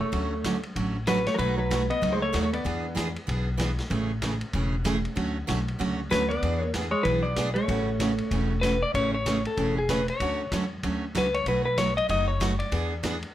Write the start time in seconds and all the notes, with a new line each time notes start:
0.01 A3 C#5
0.12 D2 D3 F#3 A3 C#4 F#4, kick, ride
0.44 D3 F#3 A3 C#4 F#4, kick, snare, hi-hat pedal, ride
0.63 ride
0.76 A1 D3 F#3 A3 C#4 F#4, kick, ride
1.07 D3 F#3 A3 C#4 F#4 B4, kick, snare, hi-hat pedal, ride
1.27 A3 C#5, snare, ride
1.34 B2 F#3 A#4
1.39 B1 F#3 A3 D#4 F#4 B4, kick, ride
1.58 F#3 B4
1.71 B2 F#3 A3 D#4 F#4, kick, snare, hi-hat pedal, ride
1.90 B3 D#5, ride
2.01 C#2 B2 F#3 A3 D#4 F#4, kick, ride
2.12 G#3 C5
2.22 A3 C#5
2.33 D#2 B2 F#3 A3 D#4 F#4, kick, snare, hi-hat pedal, ride
2.43 A3 C#5
2.53 B3 D5, ride
2.64 E2 E3 B3 D4 G#4, kick, ride
2.95 E3 B3 D4 G#4, kick, snare, hi-hat pedal, ride
3.16 ride
3.27 B1 E3 B3 D4 G#4, kick, ride
3.57 E3 B3 D4 G#4, kick, snare, hi-hat pedal, ride
3.79 snare, ride
3.90 A1 C#3 E3 A3 C#4 G#4, kick, ride
4.22 C#3 E3 A3 C#4 G#4, kick, snare, hi-hat pedal, ride
4.41 ride
4.53 E1 C#3 E3 A3 C#4 G#4, kick, ride
4.84 C#3 E3 A3 C#4 G#4, kick, snare, hi-hat pedal, ride
5.05 ride
5.16 D2 D3 F#3 A3 C#4 F#4, kick, ride
5.47 B1 D3 F#3 A3 C#4 F#4, kick, snare, hi-hat pedal, ride
5.68 ride
5.79 C#2 D3 F#3 A3 C#4 F#4, kick, ride
6.10 D2 D3 F#3 A3 C#4 F#4 B4, kick, snare, hi-hat pedal, ride
6.29 B3 D5, ride
6.43 E2 E3 B3 D4 G#4, kick, ride
6.60 A#3 C#5
6.74 E3 B3 D4 G#4, kick, snare, hi-hat pedal, ride
6.91 G#3 C#5
7.03 B1 E3 B3 D4 G#4 B4, kick, ride
7.23 B3 D5
7.36 E3 B3 D4 G#4, kick, snare, hi-hat pedal, ride
7.54 A3 C#5, ride
7.68 A1 C#3 E3 A3 C#4 F#4, kick, ride
8.00 C#3 E3 A3 C#4 F#4, kick, snare, hi-hat pedal, ride
8.18 ride
8.31 E1 C#3 E3 A3 C#4 F#4, kick, ride
8.61 C#3 E3 A3 C#4 F#4 B4, kick, snare, hi-hat pedal, ride
8.83 D5
8.94 A1 C#3 E3 A3 C#4 G#4 C#5, kick, ride
9.14 C#5
9.26 C#3 E3 A3 C#4 G#4, kick, snare, hi-hat pedal, ride
9.45 A4, ride
9.57 E1 C#3 E3 A3 C#4 G#4, kick, ride
9.78 G#4
9.89 C#3 E3 A3 C#4 G#4 B4, kick, snare, hi-hat pedal, ride
10.08 C#5, ride
10.20 D2 D3 F#3 A3 C#4 F#4, kick, ride
10.51 E2 D3 F#3 A3 C#4 F#4, kick, snare, hi-hat pedal, ride
10.83 D2 D3 F#3 A3 C#4 F#4, kick, ride
11.15 C#2 D3 F#3 A3 C#4 F#4 B4, kick, snare, hi-hat pedal, ride
11.34 C#5, ride
11.46 B1 B2 F#3 A3 D#4 F#4 B4, kick, ride
11.65 B4
11.78 B2 F#3 A3 D#4 F#4 C#5, kick, snare, hi-hat pedal, ride
11.97 D#5, ride
12.09 F#1 B2 F#3 A3 D#4 F#4 D#5, kick, ride
12.28 C#5
12.40 B2 F#3 A3 D#4 F#4, kick, snare, hi-hat pedal, ride
12.59 D5, ride
12.72 E2 E3 B3 D4 G#4, kick, ride
13.03 E3 B3 D4 G#4, kick, snare, hi-hat pedal, ride
13.23 ride